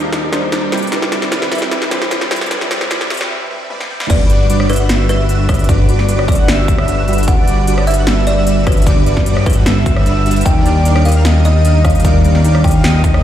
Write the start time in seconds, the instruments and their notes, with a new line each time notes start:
Already playing: analog synth bass D#2, felt piano G3 A#3 D4 D#4 A#4 C5, analog synth pad G3 A#5 D6, riser
0.03 supersaw synth G3 D4 D#4 A#4 F5
0.13 supersaw synth G3 D4 D#4 A#4 D#5, snare, closed hi-hat
0.31 felt piano G3 A#3 D4 D#4 C5, supersaw synth G3 D4 D#4 A#4 D#5, snare, closed hi-hat
0.52 supersaw synth G3 D4 D#4 A#4 D5, snare, closed hi-hat
0.72 analog synth bass C2, supersaw synth G3 C4 E4 B4 G5, analog synth pad C4 E5 B5 D6, snare, closed hi-hat
0.77 closed hi-hat
0.82 supersaw synth G3 C4 E4 B4 D5, closed hi-hat
0.87 felt piano G3 C4, closed hi-hat
0.92 supersaw synth G3 C4 E4 B4 D5, felt piano D4 E4 B4, snare, closed hi-hat
1.02 snare
1.12 supersaw synth G3 C4 E4 B4 D5, snare, closed hi-hat
1.22 snare
1.32 supersaw synth G3 C4 E4 B4 D5, snare, closed hi-hat
1.42 snare
1.52 supersaw synth G3 C4 E4 B4 E5, snare, closed hi-hat
1.55 closed hi-hat
1.58 supersaw synth G3 C4 E4 B4 G5, snare, closed hi-hat
1.71 supersaw synth G3 C4 E4 B4 E5, snare, closed hi-hat
1.82 snare
1.89 felt piano G3 C4 D4 E4, supersaw synth G3 C4 E4 B4 E5, snare, closed hi-hat
1.93 felt piano C5
2.02 snare
2.11 supersaw synth G3 C4 E4 B4 D5, snare, closed hi-hat
2.21 snare
2.31 supersaw synth G3 C4 E4 B4 G5, snare, closed hi-hat
2.36 closed hi-hat
2.41 supersaw synth G3 C4 E4 B4 D5, snare, closed hi-hat
2.46 felt piano G3 C4, closed hi-hat
2.51 supersaw synth G3 C4 E4 B4 D5, felt piano D4 E4 B4, snare, closed hi-hat
2.61 snare
2.71 supersaw synth G3 C4 E4 B4 D5, snare, closed hi-hat
2.81 snare
2.90 supersaw synth G3 C4 E4 B4 D5, snare, closed hi-hat
3.01 snare
3.10 supersaw synth G3 C4 E4 B4 E5, snare, closed hi-hat
3.14 closed hi-hat
3.17 supersaw synth G3 C4 E4 B4 G5, snare, closed hi-hat
3.30 supersaw synth G3 C4 E4 B4 E5
3.50 supersaw synth G3 C4 E4 B4 E5
3.70 supersaw synth G3 C4 E4 B4 D5, high tom
3.80 snare
3.90 supersaw synth G3 C4 E4 B4 G5
4.00 supersaw synth G3 C4 E4 B4 D5, snare
4.10 analog synth bass G1, supersaw synth G3 D4 F#4 B4, digital synth lead D5, kalimba D5, kick, closed hi-hat, crash, impact
4.30 supersaw synth G3 D4 F#4 B4 D5, digital synth lead D5, closed hi-hat
4.50 supersaw synth G3 D4 F#4 B4 D5, digital synth lead D5, closed hi-hat
4.60 cross-stick
4.69 supersaw synth G3 D4 F#4 B4 E5, kalimba B4, digital synth lead E5, closed hi-hat
4.73 closed hi-hat
4.76 supersaw synth G3 D4 F#4 B4 F#5, digital synth lead F#5, closed hi-hat
4.89 supersaw synth G3 D4 F#4 B4 E5, digital synth lead E5, snare, closed hi-hat
5.09 supersaw synth G3 D4 F#4 B4 E5, kalimba B4, digital synth lead E5, closed hi-hat
5.20 supersaw synth G3 D4 F#4 B4 E5, digital synth lead E5
5.29 supersaw synth G3 D4 F#4 B4 E5, digital synth lead E5, closed hi-hat
5.49 supersaw synth G3 D4 B4 E5, kalimba B4, digital synth lead E5, kick, cross-stick, closed hi-hat
5.54 closed hi-hat
5.59 closed hi-hat
5.64 closed hi-hat
5.69 supersaw synth G3 D4 F#4 B4 D5, digital synth lead D5, kick, closed hi-hat
5.89 supersaw synth G3 D4 F#4 B4 D5, digital synth lead D5, closed hi-hat
5.99 snare
6.09 supersaw synth G3 D4 F#4 B4 D5, digital synth lead D5, closed hi-hat
6.19 cross-stick
6.28 supersaw synth G3 D4 F#4 B4 E5, kalimba D5, digital synth lead E5, kick, closed hi-hat
6.32 closed hi-hat
6.35 supersaw synth G3 D4 F#4 B4 F#5, digital synth lead F#5, closed hi-hat
6.48 supersaw synth G3 D4 F#4 B4 E5, digital synth lead E5, snare, closed hi-hat
6.68 supersaw synth G3 D4 F#4 B4 E5, digital synth lead E5, kick, closed hi-hat
6.78 supersaw synth G3 D4 F#4 B4 E5, digital synth lead E5, cross-stick
6.88 supersaw synth G3 D4 F#4 B4 E5, digital synth lead E5, closed hi-hat
7.08 supersaw synth G3 D4 F#4 B4 E5, digital synth lead E5, closed hi-hat
7.13 closed hi-hat
7.18 closed hi-hat
7.23 closed hi-hat
7.28 supersaw synth G3 D4 F#4 B4 D5, digital synth lead D5, kalimba F#5, kick, closed hi-hat
7.47 supersaw synth G3 D4 F#4 B4 D5, digital synth lead D5, closed hi-hat
7.67 supersaw synth G3 D4 F#4 B4 D5, digital synth lead D5, closed hi-hat
7.78 cross-stick
7.87 supersaw synth G3 D4 F#4 B4 E5, digital synth lead E5, kalimba E5, closed hi-hat
7.91 closed hi-hat
7.94 digital synth lead F#5, closed hi-hat
7.98 supersaw synth G3 D4 F#4 B4 F#5
8.07 supersaw synth G3 D4 F#4 B4 E5, digital synth lead E5, snare, closed hi-hat
8.27 supersaw synth G3 D4 F#4 B4 E5, kalimba D5, digital synth lead E5, closed hi-hat
8.37 supersaw synth G3 D4 F#4 B4 E5, digital synth lead E5
8.47 supersaw synth G3 D4 F#4 B4 E5, digital synth lead E5, closed hi-hat
8.67 supersaw synth G3 D4 F#4 B4 E5, kalimba B4, digital synth lead E5, kick, cross-stick, closed hi-hat
8.72 closed hi-hat
8.77 closed hi-hat
8.82 closed hi-hat
8.86 supersaw synth G3 D4 F#4 B4 D5, digital synth lead D5, kick, closed hi-hat
9.06 supersaw synth G3 D4 F#4 B4 D5, digital synth lead D5, closed hi-hat
9.17 kick, snare
9.26 supersaw synth G3 D4 F#4 B4 D5, digital synth lead D5, closed hi-hat
9.37 cross-stick
9.46 supersaw synth G3 D4 F#4 B4 E5, kalimba B4, digital synth lead E5, kick, closed hi-hat
9.50 closed hi-hat
9.53 supersaw synth G3 D4 F#4 B4 F#5, digital synth lead F#5, closed hi-hat
9.66 supersaw synth G3 D4 F#4 B4 E5, digital synth lead E5, snare, closed hi-hat
9.86 supersaw synth G3 D4 F#4 B4 E5, digital synth lead E5, kick, closed hi-hat
9.96 supersaw synth G3 D4 F#4 B4 E5, digital synth lead E5, cross-stick
10.06 supersaw synth G3 D4 F#4 B4 E5, digital synth lead E5, closed hi-hat
10.26 supersaw synth G3 D4 F#4 B4 E5, digital synth lead E5, closed hi-hat
10.31 closed hi-hat
10.36 closed hi-hat
10.41 closed hi-hat
10.46 analog synth bass D#2, supersaw synth G3 D4 D#4 A#4 D5, digital synth lead D5, kalimba G5, kick, closed hi-hat
10.66 supersaw synth G3 D4 D#4 A#4 D5, digital synth lead D5, closed hi-hat
10.85 supersaw synth G3 D4 D#4 A#4 D5, digital synth lead D5, closed hi-hat
10.96 cross-stick
11.05 supersaw synth G3 D4 D#4 A#4 D#5, digital synth lead D#5, kalimba F5, closed hi-hat
11.09 closed hi-hat
11.12 digital synth lead F5, closed hi-hat
11.16 supersaw synth G3 D4 D#4 A#4 F5
11.25 supersaw synth G3 D4 D#4 A#4 D#5, digital synth lead D#5, snare, closed hi-hat
11.45 supersaw synth G3 D4 D#4 A#4 D#5, digital synth lead D#5, kalimba D#5, closed hi-hat
11.55 supersaw synth G3 D4 D#4 A#4 D#5, digital synth lead D#5
11.65 supersaw synth G3 D4 D#4 A#4 D#5, digital synth lead D#5, closed hi-hat
11.85 supersaw synth G3 D4 D#4 A#4 D#5, digital synth lead D#5, kalimba F5, kick, cross-stick, closed hi-hat
11.90 closed hi-hat
11.95 closed hi-hat
12.00 closed hi-hat
12.04 supersaw synth G3 D4 D#4 A#4 D5, digital synth lead D5, kick, closed hi-hat
12.24 supersaw synth G3 D4 D#4 A#4 D5, digital synth lead D5, closed hi-hat
12.35 snare
12.44 supersaw synth G3 D4 D#4 A#4 D5, digital synth lead D5, closed hi-hat
12.55 cross-stick
12.64 supersaw synth G3 D4 D#4 A#4 D#5, digital synth lead D#5, kalimba G5, kick, closed hi-hat
12.68 closed hi-hat
12.71 supersaw synth G3 D4 D#4 A#4 F5, digital synth lead F5, closed hi-hat
12.84 supersaw synth G3 D4 D#4 A#4 D#5, digital synth lead D#5, snare, closed hi-hat
13.04 supersaw synth D4 D#4 A#4 D#5, digital synth lead D#5, kick, closed hi-hat
13.14 supersaw synth G3 D4 D#4 A#4 D#5, digital synth lead D#5, cross-stick